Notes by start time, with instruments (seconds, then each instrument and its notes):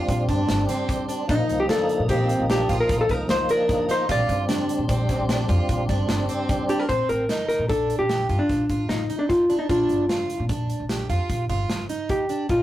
Already playing: tonewheel organ G3 C4 D4, twelve-string acoustic guitar F4
0.08 upright bass A#1, kick, closed hi-hat
0.29 upright bass G1, twelve-string acoustic guitar D4, kick, closed hi-hat
0.49 upright bass G1, snare, closed hi-hat
0.69 twelve-string acoustic guitar C4, snare, closed hi-hat
0.89 kick, closed hi-hat
1.09 twelve-string acoustic guitar D4, closed hi-hat
1.27 upright bass A#1, tonewheel organ F3 A#3 D#4, twelve-string acoustic guitar D#4, hollow-body jazz guitar D#4, kick, closed hi-hat
1.49 upright bass C2, closed hi-hat
1.60 hollow-body jazz guitar G4
1.69 twelve-string acoustic guitar D4, hollow-body jazz guitar A4, snare, closed hi-hat
1.89 closed hi-hat
1.99 upright bass A#2
2.09 upright bass A#1, twelve-string acoustic guitar C4, hollow-body jazz guitar G4, kick, closed hi-hat
2.29 closed hi-hat
2.39 upright bass A#1
2.50 twelve-string acoustic guitar D4, hollow-body jazz guitar G4, snare, closed hi-hat
2.69 upright bass A#1, twelve-string acoustic guitar F4, kick, closed hi-hat
2.80 hollow-body jazz guitar A#4
2.89 upright bass A#1, kick, closed hi-hat
3.01 hollow-body jazz guitar A4
3.09 upright bass C2, twelve-string acoustic guitar D#4, hollow-body jazz guitar A#4, kick, closed hi-hat
3.29 upright bass C2, hollow-body jazz guitar C5, snare, closed hi-hat
3.49 twelve-string acoustic guitar D4, hollow-body jazz guitar A#4, closed hi-hat
3.69 kick, snare, closed hi-hat
3.89 twelve-string acoustic guitar D#4, hollow-body jazz guitar C5, snare, closed hi-hat
4.08 upright bass A#1, tonewheel organ G3 C4 D4, twelve-string acoustic guitar F4, hollow-body jazz guitar D5, kick, closed hi-hat
4.29 upright bass G1, kick, closed hi-hat
4.49 twelve-string acoustic guitar D4, snare, closed hi-hat
4.69 closed hi-hat
4.79 upright bass A#2
4.89 upright bass A#1, twelve-string acoustic guitar C4, kick, closed hi-hat
5.09 kick, snare, closed hi-hat
5.19 upright bass A#1
5.29 twelve-string acoustic guitar D4, snare, closed hi-hat
5.49 upright bass F2, twelve-string acoustic guitar F4, kick, closed hi-hat
5.69 upright bass A#1, kick, closed hi-hat
5.89 upright bass G1, twelve-string acoustic guitar D4, kick, snare, closed hi-hat
6.09 upright bass G1, snare, closed hi-hat
6.29 twelve-string acoustic guitar C4, closed hi-hat
6.49 kick, closed hi-hat
6.69 twelve-string acoustic guitar D4, hollow-body jazz guitar G4, closed hi-hat
6.79 hollow-body jazz guitar A#4
6.89 upright bass A#1, twelve-string acoustic guitar C4, hollow-body jazz guitar C5, kick, closed hi-hat
7.09 upright bass A1, hollow-body jazz guitar A#4, closed hi-hat
7.29 twelve-string acoustic guitar D#4, snare, closed hi-hat
7.48 hollow-body jazz guitar A#4, snare, closed hi-hat
7.59 upright bass A#2
7.69 upright bass A#1, twelve-string acoustic guitar D4, hollow-body jazz guitar A4, kick, closed hi-hat
7.90 closed hi-hat
7.99 upright bass A#1, hollow-body jazz guitar G4
8.09 twelve-string acoustic guitar G4, snare, closed hi-hat
8.29 upright bass G2, twelve-string acoustic guitar F4, kick, closed hi-hat
8.39 hollow-body jazz guitar D4
8.49 upright bass A#1, kick, snare, closed hi-hat
8.70 upright bass A1, twelve-string acoustic guitar F4, kick, closed hi-hat
8.89 upright bass A1, hollow-body jazz guitar D#4, snare, closed hi-hat
9.10 twelve-string acoustic guitar D#4, closed hi-hat
9.19 hollow-body jazz guitar D4
9.29 hollow-body jazz guitar F4, kick, snare, closed hi-hat
9.50 twelve-string acoustic guitar D4, closed hi-hat
9.59 hollow-body jazz guitar D#4
9.69 upright bass A#1, twelve-string acoustic guitar D4, hollow-body jazz guitar F4, kick, closed hi-hat
9.89 upright bass G1, closed hi-hat
10.09 twelve-string acoustic guitar F4, snare, closed hi-hat
10.30 closed hi-hat
10.40 upright bass A#2
10.49 upright bass A#1, twelve-string acoustic guitar D4, kick, closed hi-hat
10.70 closed hi-hat
10.80 upright bass A#1
10.89 twelve-string acoustic guitar G4, snare, closed hi-hat
11.10 upright bass F2, twelve-string acoustic guitar F4, kick, closed hi-hat
11.30 upright bass A#1, kick, closed hi-hat
11.49 upright bass G1, twelve-string acoustic guitar F4, kick, closed hi-hat
11.70 upright bass G1, snare, closed hi-hat
11.89 twelve-string acoustic guitar D#4, closed hi-hat
12.09 hollow-body jazz guitar G4, kick, closed hi-hat
12.29 twelve-string acoustic guitar D4, closed hi-hat
12.49 upright bass A#1, twelve-string acoustic guitar D#4, hollow-body jazz guitar F4, kick, closed hi-hat